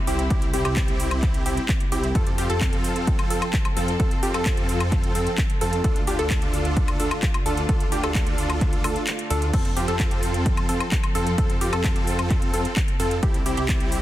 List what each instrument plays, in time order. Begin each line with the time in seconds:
Already playing: string section C3 G3 E4
0.07 detuned saw bass C2, supersaw synth C4 E4 G4, synth pluck G4, open hi-hat
0.19 closed hi-hat
0.30 supersaw synth C4 E4 G4, synth pluck G4, kick, closed hi-hat
0.42 closed hi-hat
0.53 detuned saw bass C2, supersaw synth C4 E4 G4, synth pluck G4, open hi-hat
0.65 detuned saw bass C2, supersaw synth C4 E4 G4, synth pluck G4, closed hi-hat, high woodblock
0.76 kick, clap, closed hi-hat
0.88 closed hi-hat
1.00 open hi-hat
1.11 closed hi-hat, high woodblock
1.22 kick, clap, closed hi-hat
1.34 closed hi-hat
1.46 detuned saw bass C2, supersaw synth C4 E4 G4, synth pluck G4, open hi-hat
1.57 closed hi-hat
1.69 kick, clap, closed hi-hat
1.80 closed hi-hat
1.92 detuned saw bass C2, supersaw synth C4 E4 G4, synth pluck G4, open hi-hat
2.04 closed hi-hat
2.15 string section F3 C4 A4, supersaw synth C4 F4 A4, synth pluck A4, kick, closed hi-hat
2.27 closed hi-hat
2.38 detuned saw bass F2, supersaw synth C4 F4 G4, synth pluck G4, open hi-hat
2.50 detuned saw bass F2, supersaw synth C4 F4 A4, synth pluck A4, closed hi-hat
2.61 kick, clap, closed hi-hat
2.73 closed hi-hat
2.84 open hi-hat
2.96 closed hi-hat
3.07 kick, closed hi-hat
3.19 closed hi-hat, high woodblock
3.30 detuned saw bass F2, supersaw synth C4 F4 A4, synth pluck A4, open hi-hat
3.42 closed hi-hat, high woodblock
3.53 kick, clap, closed hi-hat
3.65 closed hi-hat, high woodblock
3.77 detuned saw bass F2, supersaw synth C4 F4 A4, synth pluck A4, open hi-hat
3.88 closed hi-hat
4.00 supersaw synth C4 F4 A4, synth pluck A4, kick, closed hi-hat
4.11 closed hi-hat
4.23 detuned saw bass F2, supersaw synth C4 F4 G4, synth pluck G4, open hi-hat
4.34 detuned saw bass F2, supersaw synth C4 F4 A4, synth pluck A4, closed hi-hat, high woodblock
4.46 kick, clap, closed hi-hat
4.57 closed hi-hat
4.69 open hi-hat
4.80 closed hi-hat, high woodblock
4.92 kick, clap, closed hi-hat
5.04 closed hi-hat
5.15 detuned saw bass F2, supersaw synth C4 F4 A4, synth pluck A4, open hi-hat
5.27 closed hi-hat
5.38 kick, clap, closed hi-hat
5.50 closed hi-hat
5.61 detuned saw bass F2, supersaw synth C4 F4 A4, synth pluck A4, open hi-hat
5.73 closed hi-hat
5.84 string section D3 A3 F4, supersaw synth D4 F4 A4, synth pluck A4, kick, closed hi-hat
5.96 closed hi-hat
6.07 detuned saw bass D2, supersaw synth D4 F4 G4, synth pluck G4, open hi-hat
6.19 detuned saw bass D2, supersaw synth D4 F4 A4, synth pluck A4, closed hi-hat
6.30 kick, clap, closed hi-hat
6.42 closed hi-hat
6.53 open hi-hat
6.65 closed hi-hat
6.77 kick, closed hi-hat
6.88 closed hi-hat, high woodblock
7.00 detuned saw bass D2, supersaw synth D4 F4 A4, synth pluck A4, open hi-hat
7.11 closed hi-hat, high woodblock
7.22 kick, clap, closed hi-hat
7.34 closed hi-hat, high woodblock
7.46 detuned saw bass D2, supersaw synth D4 F4 A4, synth pluck A4, open hi-hat
7.57 closed hi-hat
7.69 supersaw synth D4 F4 A4, synth pluck A4, kick, closed hi-hat
7.80 closed hi-hat
7.92 detuned saw bass D2, supersaw synth D4 F4 G4, synth pluck G4, open hi-hat
8.03 detuned saw bass D2, supersaw synth D4 F4 A4, synth pluck A4, closed hi-hat, high woodblock
8.15 kick, clap, closed hi-hat
8.27 closed hi-hat
8.38 open hi-hat
8.50 closed hi-hat, high woodblock
8.61 kick, clap, closed hi-hat
8.73 closed hi-hat
8.84 detuned saw bass D2, supersaw synth D4 F4 A4, synth pluck A4, open hi-hat, high woodblock
8.96 closed hi-hat
9.07 clap, closed hi-hat
9.19 closed hi-hat
9.30 detuned saw bass D2, supersaw synth D4 F4 A4, synth pluck A4, open hi-hat
9.42 closed hi-hat
9.53 string section F3 C4 A4, supersaw synth C4 F4 A4, synth pluck A4, kick, closed hi-hat, crash
9.65 closed hi-hat
9.77 detuned saw bass F2, supersaw synth C4 F4 G4, synth pluck G4, open hi-hat
9.88 detuned saw bass F2, supersaw synth C4 F4 A4, synth pluck A4, closed hi-hat
9.99 kick, clap, closed hi-hat
10.11 closed hi-hat
10.23 open hi-hat
10.34 closed hi-hat
10.46 kick, closed hi-hat
10.57 closed hi-hat, high woodblock
10.69 detuned saw bass F2, supersaw synth C4 F4 A4, synth pluck A4, open hi-hat
10.80 closed hi-hat, high woodblock
10.92 kick, clap, closed hi-hat
11.04 closed hi-hat, high woodblock
11.15 detuned saw bass F2, supersaw synth C4 F4 A4, synth pluck A4, open hi-hat
11.27 closed hi-hat
11.38 supersaw synth C4 F4 A4, synth pluck A4, kick, closed hi-hat
11.50 closed hi-hat
11.61 detuned saw bass F2, supersaw synth C4 F4 G4, synth pluck G4, open hi-hat
11.73 detuned saw bass F2, supersaw synth C4 F4 A4, synth pluck A4, closed hi-hat, high woodblock
11.84 kick, clap, closed hi-hat
11.96 closed hi-hat
12.07 open hi-hat
12.19 closed hi-hat, high woodblock
12.30 kick, clap, closed hi-hat
12.42 closed hi-hat
12.53 detuned saw bass F2, supersaw synth C4 F4 A4, synth pluck A4, open hi-hat
12.65 closed hi-hat
12.76 kick, clap, closed hi-hat
12.88 closed hi-hat
13.00 detuned saw bass F2, supersaw synth C4 F4 A4, synth pluck A4, open hi-hat
13.11 closed hi-hat
13.23 string section C3 G3 E4, supersaw synth C4 E4 G4, synth pluck G4, kick, closed hi-hat
13.34 closed hi-hat
13.46 detuned saw bass C2, supersaw synth C4 E4 G4, synth pluck G4, open hi-hat
13.57 detuned saw bass C2, supersaw synth C4 E4 G4, synth pluck G4, closed hi-hat
13.69 kick, clap, closed hi-hat
13.80 closed hi-hat
13.92 open hi-hat